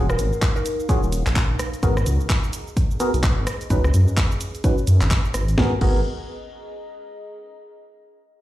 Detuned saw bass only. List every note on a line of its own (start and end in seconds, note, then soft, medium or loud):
0.00 0.16 D#1 loud
0.19 0.31 G#1 medium
1.03 1.23 D#1 loud
1.27 1.58 A#1 medium
1.83 2.04 G#1 loud
2.06 2.19 C#2 medium
3.14 3.34 B1 loud
3.37 3.46 G#1 medium
3.70 3.91 C#2 loud
3.94 4.06 F#2 medium
4.88 5.00 F#2 medium
5.02 5.10 G#1 medium
5.34 5.55 G#1 medium
5.58 5.73 G#1 medium
5.81 6.03 G#1 loud